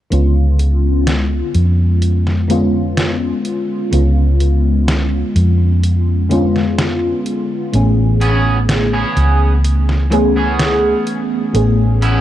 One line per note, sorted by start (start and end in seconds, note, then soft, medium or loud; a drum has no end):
0.10 1.41 C#2 medium
0.10 2.44 D3 medium
0.10 2.44 G#3 medium
0.10 2.44 B3 medium
0.10 2.45 C#4 medium
0.10 2.45 F4 medium
0.10 closed hi-hat medium
0.59 closed hi-hat medium
1.07 snare loud
1.07 closed hi-hat medium
1.54 3.31 F2 medium
1.54 closed hi-hat medium
2.02 closed hi-hat medium
2.27 snare soft
2.48 3.86 D3 medium
2.48 3.87 G#3 medium
2.48 3.87 B3 medium
2.48 3.88 C#4 medium
2.48 3.88 F4 loud
2.48 closed hi-hat medium
2.97 snare loud
2.97 closed hi-hat medium
3.45 closed hi-hat medium
3.91 5.22 C#2 medium
3.91 6.25 D3 medium
3.91 6.25 G#3 medium
3.91 6.25 B3 medium
3.91 6.26 C#4 medium
3.91 6.26 F4 medium
3.91 closed hi-hat medium
4.40 closed hi-hat medium
4.88 snare loud
4.88 closed hi-hat medium
5.36 7.12 F2 medium
5.36 closed hi-hat medium
5.84 closed hi-hat medium
6.29 7.68 D3 medium
6.29 7.68 G#3 medium
6.29 7.68 B3 medium
6.29 7.69 C#4 medium
6.29 7.69 F4 loud
6.29 closed hi-hat medium
6.56 snare soft
6.78 snare loud
6.78 closed hi-hat medium
7.26 closed hi-hat medium
7.72 9.02 A1 medium
7.72 10.06 E3 medium
7.72 10.06 A3 medium
7.72 10.06 B3 medium
7.72 10.07 C#4 medium
7.72 10.07 G#4 medium
7.72 closed hi-hat medium
8.21 8.57 B3 medium
8.21 8.57 C#4 medium
8.21 8.58 G#4 loud
8.21 closed hi-hat medium
8.69 snare loud
8.69 closed hi-hat medium
8.93 9.52 B3 medium
8.93 9.53 C#4 medium
8.93 9.53 G#4 medium
9.17 10.93 C#2 medium
9.17 closed hi-hat medium
9.64 closed hi-hat medium
9.89 snare soft
10.10 11.48 E3 medium
10.10 11.49 A3 medium
10.10 11.49 B3 medium
10.10 11.49 C#4 medium
10.10 11.50 G#4 loud
10.10 muted clean electric guitar stroke loud
10.10 closed hi-hat medium
10.36 11.19 B3 medium
10.36 11.19 C#4 medium
10.36 11.20 G#4 medium
10.59 snare loud
10.59 closed hi-hat medium
11.07 closed hi-hat medium
11.53 12.21 A1 medium
11.53 12.21 E3 medium
11.53 12.21 A3 medium
11.53 12.21 B3 medium
11.53 12.21 C#4 medium
11.53 12.21 G#4 medium
11.53 closed hi-hat medium
12.02 12.21 B3 loud
12.02 12.21 C#4 loud
12.02 12.21 E4 loud
12.02 closed hi-hat medium